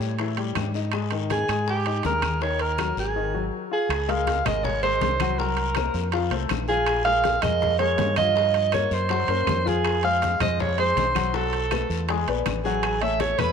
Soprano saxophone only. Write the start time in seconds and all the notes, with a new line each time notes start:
1.32 G#4
1.70 G4
2.06 A#4
2.42 C#5
2.61 A#4
2.99 G#4
3.73 G#4
4.10 F5
4.46 D#5
4.64 C#5
4.83 C5
5.38 A#4
6.68 G#4
7.05 F5
7.42 D#5
7.79 C#5
8.17 D#5
8.74 C#5
8.93 C5
9.67 G#4
10.04 F5
10.41 D#5
10.60 C#5
10.79 C5
11.35 A4
12.64 G#4
13.02 E5
13.20 C#5
13.38 B4